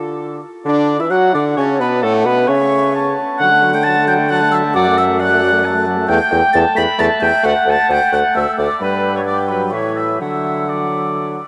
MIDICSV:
0, 0, Header, 1, 6, 480
1, 0, Start_track
1, 0, Key_signature, 2, "major"
1, 0, Tempo, 459418
1, 689, Time_signature, 3, 2, 24, 8
1, 3079, Tempo, 451467
1, 9799, Tempo, 477707
1, 12019, End_track
2, 0, Start_track
2, 0, Title_t, "Flute"
2, 0, Program_c, 0, 73
2, 0, Note_on_c, 0, 86, 66
2, 412, Note_off_c, 0, 86, 0
2, 691, Note_on_c, 0, 86, 96
2, 1046, Note_on_c, 0, 88, 104
2, 1062, Note_off_c, 0, 86, 0
2, 1144, Note_off_c, 0, 88, 0
2, 1150, Note_on_c, 0, 90, 96
2, 1213, Note_off_c, 0, 90, 0
2, 1406, Note_on_c, 0, 86, 102
2, 1469, Note_off_c, 0, 86, 0
2, 1646, Note_on_c, 0, 85, 100
2, 1709, Note_off_c, 0, 85, 0
2, 1888, Note_on_c, 0, 83, 93
2, 1951, Note_off_c, 0, 83, 0
2, 2124, Note_on_c, 0, 81, 98
2, 2354, Note_on_c, 0, 83, 107
2, 2370, Note_off_c, 0, 81, 0
2, 2589, Note_on_c, 0, 85, 121
2, 2604, Note_off_c, 0, 83, 0
2, 3313, Note_off_c, 0, 85, 0
2, 3553, Note_on_c, 0, 90, 113
2, 3888, Note_off_c, 0, 90, 0
2, 3922, Note_on_c, 0, 91, 122
2, 4021, Note_on_c, 0, 93, 127
2, 4037, Note_off_c, 0, 91, 0
2, 4271, Note_off_c, 0, 93, 0
2, 4277, Note_on_c, 0, 91, 115
2, 4341, Note_off_c, 0, 91, 0
2, 4516, Note_on_c, 0, 90, 127
2, 4740, Note_off_c, 0, 90, 0
2, 4746, Note_on_c, 0, 88, 117
2, 4810, Note_off_c, 0, 88, 0
2, 4986, Note_on_c, 0, 86, 127
2, 5225, Note_off_c, 0, 86, 0
2, 5239, Note_on_c, 0, 88, 118
2, 5303, Note_off_c, 0, 88, 0
2, 5485, Note_on_c, 0, 90, 127
2, 6172, Note_off_c, 0, 90, 0
2, 6413, Note_on_c, 0, 91, 115
2, 6862, Note_off_c, 0, 91, 0
2, 6889, Note_on_c, 0, 93, 127
2, 6953, Note_off_c, 0, 93, 0
2, 7137, Note_on_c, 0, 95, 119
2, 7200, Note_off_c, 0, 95, 0
2, 7378, Note_on_c, 0, 93, 127
2, 7442, Note_off_c, 0, 93, 0
2, 7618, Note_on_c, 0, 91, 125
2, 7869, Note_on_c, 0, 90, 111
2, 7885, Note_off_c, 0, 91, 0
2, 8105, Note_off_c, 0, 90, 0
2, 8117, Note_on_c, 0, 93, 113
2, 8346, Note_off_c, 0, 93, 0
2, 8361, Note_on_c, 0, 91, 127
2, 8583, Note_off_c, 0, 91, 0
2, 8590, Note_on_c, 0, 90, 107
2, 8653, Note_off_c, 0, 90, 0
2, 8823, Note_on_c, 0, 88, 113
2, 9057, Note_off_c, 0, 88, 0
2, 9063, Note_on_c, 0, 86, 98
2, 9295, Note_off_c, 0, 86, 0
2, 9301, Note_on_c, 0, 83, 97
2, 9664, Note_off_c, 0, 83, 0
2, 9682, Note_on_c, 0, 85, 98
2, 9736, Note_off_c, 0, 85, 0
2, 9786, Note_on_c, 0, 86, 108
2, 10019, Note_on_c, 0, 83, 92
2, 10034, Note_off_c, 0, 86, 0
2, 10242, Note_on_c, 0, 85, 99
2, 10257, Note_off_c, 0, 83, 0
2, 10488, Note_off_c, 0, 85, 0
2, 10494, Note_on_c, 0, 88, 85
2, 10734, Note_off_c, 0, 88, 0
2, 10740, Note_on_c, 0, 88, 83
2, 11229, Note_on_c, 0, 86, 77
2, 11244, Note_off_c, 0, 88, 0
2, 11955, Note_off_c, 0, 86, 0
2, 12019, End_track
3, 0, Start_track
3, 0, Title_t, "Clarinet"
3, 0, Program_c, 1, 71
3, 0, Note_on_c, 1, 65, 52
3, 428, Note_off_c, 1, 65, 0
3, 1168, Note_on_c, 1, 78, 91
3, 1664, Note_on_c, 1, 81, 86
3, 1679, Note_off_c, 1, 78, 0
3, 2123, Note_off_c, 1, 81, 0
3, 2130, Note_on_c, 1, 78, 96
3, 2605, Note_on_c, 1, 76, 80
3, 2620, Note_off_c, 1, 78, 0
3, 3074, Note_off_c, 1, 76, 0
3, 3080, Note_on_c, 1, 81, 101
3, 3550, Note_off_c, 1, 81, 0
3, 3570, Note_on_c, 1, 78, 115
3, 4032, Note_off_c, 1, 78, 0
3, 4042, Note_on_c, 1, 78, 102
3, 4514, Note_off_c, 1, 78, 0
3, 4535, Note_on_c, 1, 81, 118
3, 4998, Note_off_c, 1, 81, 0
3, 5005, Note_on_c, 1, 78, 125
3, 5473, Note_on_c, 1, 74, 101
3, 5488, Note_off_c, 1, 78, 0
3, 5953, Note_on_c, 1, 81, 116
3, 5969, Note_off_c, 1, 74, 0
3, 6418, Note_off_c, 1, 81, 0
3, 6424, Note_on_c, 1, 79, 127
3, 7361, Note_off_c, 1, 79, 0
3, 7383, Note_on_c, 1, 76, 103
3, 7858, Note_on_c, 1, 78, 119
3, 7874, Note_off_c, 1, 76, 0
3, 9500, Note_off_c, 1, 78, 0
3, 9799, Note_on_c, 1, 79, 83
3, 10267, Note_on_c, 1, 76, 83
3, 10282, Note_off_c, 1, 79, 0
3, 10743, Note_off_c, 1, 76, 0
3, 10749, Note_on_c, 1, 78, 81
3, 11935, Note_off_c, 1, 78, 0
3, 12019, End_track
4, 0, Start_track
4, 0, Title_t, "Oboe"
4, 0, Program_c, 2, 68
4, 0, Note_on_c, 2, 69, 51
4, 429, Note_off_c, 2, 69, 0
4, 691, Note_on_c, 2, 74, 89
4, 1026, Note_off_c, 2, 74, 0
4, 1047, Note_on_c, 2, 76, 97
4, 1162, Note_on_c, 2, 78, 105
4, 1177, Note_off_c, 2, 76, 0
4, 1401, Note_off_c, 2, 78, 0
4, 1407, Note_on_c, 2, 74, 83
4, 1516, Note_off_c, 2, 74, 0
4, 1637, Note_on_c, 2, 73, 87
4, 1748, Note_off_c, 2, 73, 0
4, 1883, Note_on_c, 2, 71, 92
4, 2108, Note_off_c, 2, 71, 0
4, 2114, Note_on_c, 2, 69, 93
4, 2224, Note_off_c, 2, 69, 0
4, 2346, Note_on_c, 2, 71, 95
4, 2581, Note_on_c, 2, 73, 104
4, 2597, Note_off_c, 2, 71, 0
4, 3309, Note_off_c, 2, 73, 0
4, 3546, Note_on_c, 2, 78, 117
4, 3923, Note_on_c, 2, 79, 102
4, 3939, Note_off_c, 2, 78, 0
4, 4030, Note_on_c, 2, 81, 127
4, 4046, Note_off_c, 2, 79, 0
4, 4273, Note_off_c, 2, 81, 0
4, 4279, Note_on_c, 2, 79, 108
4, 4519, Note_on_c, 2, 78, 114
4, 4535, Note_off_c, 2, 79, 0
4, 4776, Note_on_c, 2, 76, 109
4, 4792, Note_off_c, 2, 78, 0
4, 4996, Note_off_c, 2, 76, 0
4, 5003, Note_on_c, 2, 74, 120
4, 5238, Note_on_c, 2, 76, 111
4, 5254, Note_off_c, 2, 74, 0
4, 5474, Note_on_c, 2, 78, 118
4, 5490, Note_off_c, 2, 76, 0
4, 6180, Note_off_c, 2, 78, 0
4, 6423, Note_on_c, 2, 79, 126
4, 6867, Note_off_c, 2, 79, 0
4, 6914, Note_on_c, 2, 81, 125
4, 7151, Note_on_c, 2, 83, 119
4, 7167, Note_off_c, 2, 81, 0
4, 7396, Note_on_c, 2, 81, 120
4, 7412, Note_off_c, 2, 83, 0
4, 7636, Note_on_c, 2, 79, 108
4, 7652, Note_off_c, 2, 81, 0
4, 7868, Note_off_c, 2, 79, 0
4, 7875, Note_on_c, 2, 78, 119
4, 8133, Note_on_c, 2, 81, 107
4, 8149, Note_off_c, 2, 78, 0
4, 8367, Note_on_c, 2, 79, 115
4, 8383, Note_off_c, 2, 81, 0
4, 8612, Note_on_c, 2, 78, 106
4, 8628, Note_off_c, 2, 79, 0
4, 8828, Note_off_c, 2, 78, 0
4, 8834, Note_on_c, 2, 76, 104
4, 9068, Note_off_c, 2, 76, 0
4, 9074, Note_on_c, 2, 74, 86
4, 9310, Note_off_c, 2, 74, 0
4, 9332, Note_on_c, 2, 71, 99
4, 9680, Note_off_c, 2, 71, 0
4, 9686, Note_on_c, 2, 73, 82
4, 9738, Note_off_c, 2, 73, 0
4, 9802, Note_on_c, 2, 74, 86
4, 9906, Note_off_c, 2, 74, 0
4, 10040, Note_on_c, 2, 71, 77
4, 10144, Note_off_c, 2, 71, 0
4, 10270, Note_on_c, 2, 73, 81
4, 10511, Note_on_c, 2, 76, 79
4, 10526, Note_off_c, 2, 73, 0
4, 10739, Note_off_c, 2, 76, 0
4, 10746, Note_on_c, 2, 76, 81
4, 11233, Note_on_c, 2, 74, 65
4, 11248, Note_off_c, 2, 76, 0
4, 11957, Note_off_c, 2, 74, 0
4, 12019, End_track
5, 0, Start_track
5, 0, Title_t, "French horn"
5, 0, Program_c, 3, 60
5, 0, Note_on_c, 3, 65, 63
5, 406, Note_off_c, 3, 65, 0
5, 678, Note_on_c, 3, 62, 109
5, 1019, Note_off_c, 3, 62, 0
5, 1042, Note_on_c, 3, 64, 93
5, 1098, Note_off_c, 3, 64, 0
5, 1160, Note_on_c, 3, 66, 95
5, 1404, Note_on_c, 3, 62, 99
5, 1420, Note_off_c, 3, 66, 0
5, 1648, Note_on_c, 3, 61, 110
5, 1664, Note_off_c, 3, 62, 0
5, 1876, Note_on_c, 3, 59, 104
5, 1892, Note_off_c, 3, 61, 0
5, 2126, Note_on_c, 3, 57, 111
5, 2142, Note_off_c, 3, 59, 0
5, 2365, Note_on_c, 3, 59, 103
5, 2380, Note_off_c, 3, 57, 0
5, 2607, Note_on_c, 3, 61, 90
5, 2622, Note_off_c, 3, 59, 0
5, 3322, Note_off_c, 3, 61, 0
5, 3569, Note_on_c, 3, 54, 86
5, 3680, Note_on_c, 3, 57, 78
5, 3695, Note_off_c, 3, 54, 0
5, 3805, Note_on_c, 3, 54, 81
5, 3821, Note_off_c, 3, 57, 0
5, 3928, Note_on_c, 3, 57, 83
5, 3944, Note_off_c, 3, 54, 0
5, 4042, Note_off_c, 3, 57, 0
5, 4049, Note_on_c, 3, 54, 77
5, 4170, Note_on_c, 3, 57, 78
5, 4186, Note_off_c, 3, 54, 0
5, 4283, Note_on_c, 3, 54, 91
5, 4299, Note_off_c, 3, 57, 0
5, 4395, Note_on_c, 3, 57, 78
5, 4410, Note_off_c, 3, 54, 0
5, 4514, Note_off_c, 3, 57, 0
5, 4521, Note_on_c, 3, 54, 90
5, 4647, Note_on_c, 3, 57, 73
5, 4663, Note_off_c, 3, 54, 0
5, 4755, Note_on_c, 3, 54, 84
5, 4771, Note_off_c, 3, 57, 0
5, 4880, Note_on_c, 3, 57, 84
5, 4896, Note_off_c, 3, 54, 0
5, 4985, Note_off_c, 3, 57, 0
5, 4992, Note_on_c, 3, 54, 101
5, 5132, Note_on_c, 3, 57, 88
5, 5148, Note_off_c, 3, 54, 0
5, 5250, Note_on_c, 3, 54, 79
5, 5266, Note_off_c, 3, 57, 0
5, 5357, Note_on_c, 3, 57, 92
5, 5373, Note_off_c, 3, 54, 0
5, 5470, Note_off_c, 3, 57, 0
5, 5477, Note_on_c, 3, 54, 90
5, 5591, Note_on_c, 3, 57, 84
5, 5607, Note_off_c, 3, 54, 0
5, 5711, Note_on_c, 3, 54, 93
5, 5727, Note_off_c, 3, 57, 0
5, 5821, Note_on_c, 3, 57, 83
5, 5837, Note_off_c, 3, 54, 0
5, 5937, Note_off_c, 3, 57, 0
5, 5943, Note_on_c, 3, 54, 90
5, 6052, Note_on_c, 3, 57, 76
5, 6068, Note_off_c, 3, 54, 0
5, 6184, Note_on_c, 3, 54, 89
5, 6200, Note_off_c, 3, 57, 0
5, 6297, Note_on_c, 3, 57, 84
5, 6313, Note_off_c, 3, 54, 0
5, 6405, Note_off_c, 3, 57, 0
5, 6411, Note_on_c, 3, 57, 114
5, 6521, Note_off_c, 3, 57, 0
5, 6652, Note_on_c, 3, 57, 87
5, 6761, Note_off_c, 3, 57, 0
5, 6897, Note_on_c, 3, 57, 80
5, 7005, Note_off_c, 3, 57, 0
5, 7121, Note_on_c, 3, 57, 90
5, 7233, Note_off_c, 3, 57, 0
5, 7371, Note_on_c, 3, 57, 98
5, 7481, Note_off_c, 3, 57, 0
5, 7598, Note_on_c, 3, 57, 80
5, 7711, Note_off_c, 3, 57, 0
5, 7847, Note_on_c, 3, 57, 107
5, 7958, Note_off_c, 3, 57, 0
5, 8084, Note_on_c, 3, 57, 83
5, 8196, Note_off_c, 3, 57, 0
5, 8335, Note_on_c, 3, 57, 73
5, 8446, Note_off_c, 3, 57, 0
5, 8582, Note_on_c, 3, 57, 83
5, 8691, Note_off_c, 3, 57, 0
5, 8820, Note_on_c, 3, 57, 93
5, 8930, Note_off_c, 3, 57, 0
5, 9062, Note_on_c, 3, 57, 76
5, 9173, Note_off_c, 3, 57, 0
5, 9304, Note_on_c, 3, 55, 96
5, 9760, Note_off_c, 3, 55, 0
5, 9782, Note_on_c, 3, 55, 66
5, 9891, Note_off_c, 3, 55, 0
5, 10025, Note_on_c, 3, 54, 76
5, 10264, Note_on_c, 3, 52, 73
5, 10279, Note_off_c, 3, 54, 0
5, 10739, Note_on_c, 3, 54, 72
5, 10754, Note_off_c, 3, 52, 0
5, 11221, Note_off_c, 3, 54, 0
5, 11227, Note_on_c, 3, 54, 65
5, 11939, Note_off_c, 3, 54, 0
5, 12019, End_track
6, 0, Start_track
6, 0, Title_t, "Bassoon"
6, 0, Program_c, 4, 70
6, 0, Note_on_c, 4, 50, 49
6, 420, Note_off_c, 4, 50, 0
6, 684, Note_on_c, 4, 50, 90
6, 1051, Note_on_c, 4, 52, 84
6, 1067, Note_off_c, 4, 50, 0
6, 1159, Note_on_c, 4, 54, 104
6, 1174, Note_off_c, 4, 52, 0
6, 1401, Note_off_c, 4, 54, 0
6, 1408, Note_on_c, 4, 50, 92
6, 1642, Note_off_c, 4, 50, 0
6, 1649, Note_on_c, 4, 49, 101
6, 1886, Note_on_c, 4, 47, 91
6, 1902, Note_off_c, 4, 49, 0
6, 2127, Note_on_c, 4, 45, 104
6, 2143, Note_off_c, 4, 47, 0
6, 2350, Note_on_c, 4, 47, 97
6, 2366, Note_off_c, 4, 45, 0
6, 2589, Note_off_c, 4, 47, 0
6, 2596, Note_on_c, 4, 49, 92
6, 3302, Note_off_c, 4, 49, 0
6, 3565, Note_on_c, 4, 50, 97
6, 5006, Note_on_c, 4, 42, 93
6, 5022, Note_off_c, 4, 50, 0
6, 6417, Note_off_c, 4, 42, 0
6, 6424, Note_on_c, 4, 40, 112
6, 6531, Note_off_c, 4, 40, 0
6, 6663, Note_on_c, 4, 40, 103
6, 6769, Note_off_c, 4, 40, 0
6, 6908, Note_on_c, 4, 40, 111
6, 7014, Note_off_c, 4, 40, 0
6, 7145, Note_on_c, 4, 40, 87
6, 7251, Note_off_c, 4, 40, 0
6, 7380, Note_on_c, 4, 40, 101
6, 7488, Note_off_c, 4, 40, 0
6, 7621, Note_on_c, 4, 40, 83
6, 7729, Note_off_c, 4, 40, 0
6, 7866, Note_on_c, 4, 38, 93
6, 7973, Note_off_c, 4, 38, 0
6, 8093, Note_on_c, 4, 38, 90
6, 8203, Note_off_c, 4, 38, 0
6, 8335, Note_on_c, 4, 38, 99
6, 8446, Note_off_c, 4, 38, 0
6, 8583, Note_on_c, 4, 38, 82
6, 8692, Note_off_c, 4, 38, 0
6, 8833, Note_on_c, 4, 38, 93
6, 8940, Note_off_c, 4, 38, 0
6, 9071, Note_on_c, 4, 38, 85
6, 9180, Note_off_c, 4, 38, 0
6, 9315, Note_on_c, 4, 43, 83
6, 10265, Note_on_c, 4, 45, 77
6, 10280, Note_off_c, 4, 43, 0
6, 10737, Note_off_c, 4, 45, 0
6, 10743, Note_on_c, 4, 50, 73
6, 11932, Note_off_c, 4, 50, 0
6, 12019, End_track
0, 0, End_of_file